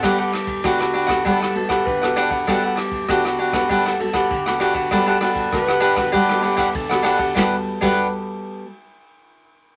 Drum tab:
CC |----------------|----------------|----------------|---x------------|
RD |x-xxx-xxx-xxx-xx|x-xxx-xxx-xxx-xx|x-xxx-xxx-xxx-xx|----------------|
SD |r-r-rr-r-r-r-rr-|r-r-rr-r-r-r-rr-|r-r-rr-r-r-r-rr-|o---------------|
BD |o--oo--oo--oo--o|o--oo--oo--oo--o|o--oo--oo--oo--o|o--o------------|